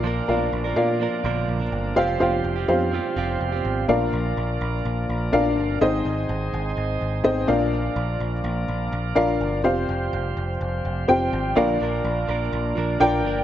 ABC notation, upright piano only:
X:1
M:4/4
L:1/16
Q:1/4=125
K:Bbmix
V:1 name="Upright piano"
[FBdf]2 [FBdf]4 [FBdf]6- [FBdf] z3 | [FGcf]2 [FGcf]4 [FGcf]6- [FGcf] z3 | [DFBdf]6- [DFBdf] z4 z [DFBdf]4 | [CEAce]6- [CEAce] z4 z [CEAce]2 [DFBdf]2- |
[DFBdf]4- [DFBdf] z6 z [DFBdf]4 | [CFGcf]6- [CFGcf] z4 z [CFGcg]4 | [DFBdf]6- [DFBdf] z4 z [DFBdg]4 |]
V:2 name="Upright piano" clef=bass
B,,4 z12 | z16 | B,,6 z8 z2 | A,,6 z8 B,,2- |
B,,4 z12 | z16 | B,,6 z8 z2 |]